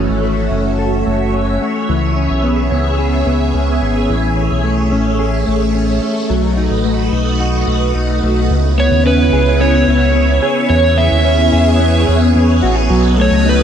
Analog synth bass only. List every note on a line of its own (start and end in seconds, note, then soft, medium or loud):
0.10 0.49 G#1 medium
0.51 1.04 F#1 medium
1.07 1.59 F#1 medium
1.89 2.29 C#2 medium
2.31 2.70 B1 medium
2.72 3.24 C#2 medium
3.27 3.53 C#2 medium
3.55 3.81 C#2 medium
3.82 4.08 G#1 medium
4.10 4.49 A1 loud
4.52 4.94 B1 medium
4.93 5.45 A1 medium
5.48 6.00 A1 medium
6.30 6.69 B1 loud
6.71 7.10 A1 medium
7.12 7.65 B1 medium
7.67 7.94 B1 medium
7.95 8.21 B1 medium
8.23 8.49 B1 medium
8.50 8.89 C#2 loud
8.91 9.31 D#2 medium
9.33 9.85 C#2 medium
9.88 10.40 C#2 medium
10.70 11.09 E2 loud
11.12 11.51 D#2 medium
11.53 12.05 E2 loud
12.09 12.34 E2 loud
12.36 12.62 E2 medium
12.63 12.89 A1 medium
12.90 13.29 B1 loud
13.31 13.63 C#2 medium